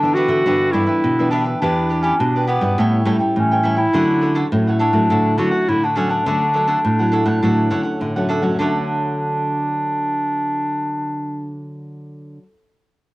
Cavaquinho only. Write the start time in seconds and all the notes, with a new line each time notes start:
0.03 G4 B4 E5
0.15 D4 G4 B4 E5
0.29 G4 B4 E5
0.46 D4 G4 B4 E5
0.73 D4 G4 B4 E5
0.86 G4 B4 E5
1.19 G4 B4 E5
1.31 D4 G4 B4 E5
1.44 G4 B4 E5
1.62 E4 G4 B4 D5
1.89 E4 G4 B4 D5
2.03 E4 G4 B4 D5
2.36 G4 B4 D5
2.47 E4 G4 B4 D5
2.61 G4 B4 D5
2.78 E4 A4 C#5 G5
3.06 E4 A4 C#5 G5
3.19 A4 G5
3.52 A4 C#5 G5
3.63 E4 A4 C#5 G5
3.76 A4 C#5 G5
3.93 D4 A4 C#5 F#5
4.21 D4 A4 C#5 F#5
4.35 D4 A4 C#5 F#5
4.67 A4 C#5 F#5
4.80 D4 A4 C#5 F#5
4.93 A4 C#5 F#5
5.10 D4 A4 C#5 F#5
5.38 D4 A4 C#5 F#5
5.51 A4 C#5 F#5
5.84 A4 C#5 F#5
5.96 D4 A4 C#5 F#5
6.09 A4 C#5 F#5
6.26 D4 A4 C#5 F#5
6.54 D4 A4 C#5 F#5
6.67 D4 A4 C#5 F#5
6.99 A4 C#5 F#5
7.12 D4 A4 C#5 F#5
7.25 A4 C#5 F#5
7.43 D4 A4 C#5 F#5
7.70 D4 A4 C#5 F#5
7.83 A4 C#5 F#5
8.16 A4 C#5 F#5
8.29 D4 A4 C#5 F#5
8.42 A4 C#5 F#5
8.59 D4 A4 C#5 F#5